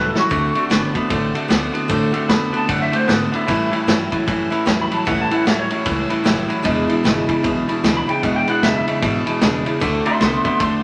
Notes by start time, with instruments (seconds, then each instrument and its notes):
Already playing: upright bass C#2, clean electric guitar A2 F#3, steel-string acoustic guitar A2 E3 G3 C#4 E4
0.06 clean electric guitar A4
0.14 clean electric guitar A2 F#3, steel-string acoustic guitar G3 C#4 E4, snare
0.19 clean electric guitar F#4
0.30 upright bass D2, steel-string acoustic guitar D3 A3 C4 F#4, clean electric guitar D3 A3, kick, ride
0.54 clean electric guitar D3 A3, steel-string acoustic guitar A3 C4 F#4, ride
0.70 upright bass G1, steel-string acoustic guitar D3 A3 C4 F#4, clean electric guitar D3 B3, snare, ride
0.94 clean electric guitar D3 B3, steel-string acoustic guitar A3 C4 F#4, muted upright bass stroke, kick, ride
1.09 upright bass A1, steel-string acoustic guitar D3 A3 C4 F#4, clean electric guitar D3 A3, kick, ride
1.34 clean electric guitar D3 A3, steel-string acoustic guitar A3 C4 F#4, ride
1.48 upright bass D2, steel-string acoustic guitar D3 A3 C4 F#4, clean electric guitar D3 B3, snare, ride
1.72 clean electric guitar D3 B3, steel-string acoustic guitar A3 C4 F#4, ride
1.88 upright bass A2, steel-string acoustic guitar D3 A3 C4 F#4, clean electric guitar D3 A3, kick, ride
2.12 clean electric guitar D3 A3, steel-string acoustic guitar A3 C4 F#4, muted upright bass stroke, ride
2.28 upright bass F2, clean electric guitar D3 B3 B5, steel-string acoustic guitar D3 A3 C4 F#4, snare, ride
2.52 clean electric guitar D3 B3, steel-string acoustic guitar A3 C4 F#4, ride
2.57 clean electric guitar A5
2.68 upright bass F#2, steel-string acoustic guitar D3 A3 C4 F#4, clean electric guitar D3 A3 F#5, kick, ride
2.82 clean electric guitar E5
2.92 clean electric guitar D3 A3, steel-string acoustic guitar A3 C4 F#4, ride
2.96 clean electric guitar C5
3.07 upright bass G#2, clean electric guitar D3 B3 B4, steel-string acoustic guitar D3 A3 C4 F#4, snare, ride
3.21 clean electric guitar A4
3.31 clean electric guitar D3 B3 E4, steel-string acoustic guitar A3 C4 F#4, muted upright bass stroke, ride
3.47 clean electric guitar A2 E3, steel-string acoustic guitar A2 E3 G3 C#4 E4, upright bass A2, kick, ride
3.71 clean electric guitar A2 E3, steel-string acoustic guitar G3 C#4 E4, muted upright bass stroke, ride
3.87 upright bass G2, steel-string acoustic guitar A2 E3 G3 C#4 E4, clean electric guitar A2 F#3, snare, ride
4.11 clean electric guitar A2 F#3, steel-string acoustic guitar G3 C#4 E4, muted upright bass stroke, kick, ride
4.27 upright bass F#2, clean electric guitar A2 E3, steel-string acoustic guitar E3 G3 C#4 E4, kick, ride
4.50 clean electric guitar A2 E3, steel-string acoustic guitar G3 C#4 E4, muted upright bass stroke, ride
4.65 upright bass E2, steel-string acoustic guitar A2 E3 G3 C#4 E4, clean electric guitar A2 F#3, snare, ride
4.81 clean electric guitar B5
4.91 clean electric guitar A2 F#3 A5, steel-string acoustic guitar G3 C#4 E4, ride
5.05 upright bass C#2, steel-string acoustic guitar A2 E3 G3 C#4 E4, clean electric guitar A2 E3 F#5, kick, ride
5.22 clean electric guitar A5
5.31 clean electric guitar A2 E3 F#5, steel-string acoustic guitar G3 C#4 E4, ride
5.46 upright bass D2, steel-string acoustic guitar A2 E3 G3 C#4 E4, clean electric guitar A2 F#3 E5, snare, ride
5.59 clean electric guitar C#5
5.70 clean electric guitar A2 F#3, steel-string acoustic guitar G3 C#4 E4, ride
5.85 upright bass C#2, clean electric guitar A2 E3, steel-string acoustic guitar E3 G3 C#4 E4, kick, ride
6.08 clean electric guitar A2 E3, steel-string acoustic guitar G3 C#4 E4, muted upright bass stroke, ride
6.24 upright bass F#1, steel-string acoustic guitar A2 E3 G3 C#4 E4, clean electric guitar A2 F#3, snare, ride
6.48 clean electric guitar A2 F#3, steel-string acoustic guitar G3 C#4 E4, muted upright bass stroke, ride
6.62 upright bass E1, steel-string acoustic guitar E2 B2 E3 G#3 D4 E4, clean electric guitar E2 B2, kick, ride
6.88 clean electric guitar E2 B2, steel-string acoustic guitar E3 G#3 D4 E4, muted upright bass stroke, ride
7.04 upright bass G#1, steel-string acoustic guitar E2 B2 E3 G#3 D4 E4, clean electric guitar E2 C#3, snare, ride
7.27 clean electric guitar E2 C#3, steel-string acoustic guitar E3 G#3 D4 E4, muted upright bass stroke, kick, ride
7.43 upright bass B1, clean electric guitar E2 B2, steel-string acoustic guitar E3 G#3 D4 E4, kick, ride
7.68 clean electric guitar E2 B2, steel-string acoustic guitar E3 G#3 D4 E4, muted upright bass stroke, ride
7.83 upright bass D2, steel-string acoustic guitar E2 B2 E3 G#3 D4 E4, clean electric guitar E2 C#3, snare, ride
7.97 clean electric guitar B5
8.07 clean electric guitar E2 C#3 G5, steel-string acoustic guitar E3 G#3 D4 E4, ride
8.22 clean electric guitar E2 B2 F#5, steel-string acoustic guitar E2 B2 E3 G#3 D4 E4, upright bass E2, kick, ride
8.36 clean electric guitar G5
8.47 clean electric guitar E2 B2 F#5, steel-string acoustic guitar E3 G#3 D4 E4, ride
8.62 steel-string acoustic guitar E2 B2 E3 G#3 D4 E4, clean electric guitar E2 C#3 E5, upright bass F#2, snare, ride
8.76 clean electric guitar E5
8.87 clean electric guitar E2 C#3, steel-string acoustic guitar E3 G#3 D4 E4, muted upright bass stroke, ride
9.02 clean electric guitar E2 B2, upright bass G#2, steel-string acoustic guitar E3 G#3 D4 E4, kick, ride
9.26 clean electric guitar E2 B2, steel-string acoustic guitar E3 G#3 D4 E4, muted upright bass stroke, ride
9.41 steel-string acoustic guitar E2 B2 E3 G#3 D4 E4, clean electric guitar E2 C#3, upright bass E2, snare, ride
9.65 clean electric guitar E2 C#3, steel-string acoustic guitar E3 G#3 D4 E4, muted upright bass stroke, ride
9.80 upright bass D2, steel-string acoustic guitar D3 A3 C4 F#4, clean electric guitar D3 A3, kick, ride
10.05 clean electric guitar D3 A3 E5 C6, steel-string acoustic guitar A3 C4 F#4, ride
10.20 upright bass C2, clean electric guitar D3 B3 E5 C6, steel-string acoustic guitar D3 A3 C4 F#4, snare, ride
10.43 clean electric guitar D3 B3 E5 C6, steel-string acoustic guitar A3 C4 F#4, kick, ride
10.59 upright bass E2, clean electric guitar D3 A3 C6, steel-string acoustic guitar D3 A3 C4 F#4, kick, ride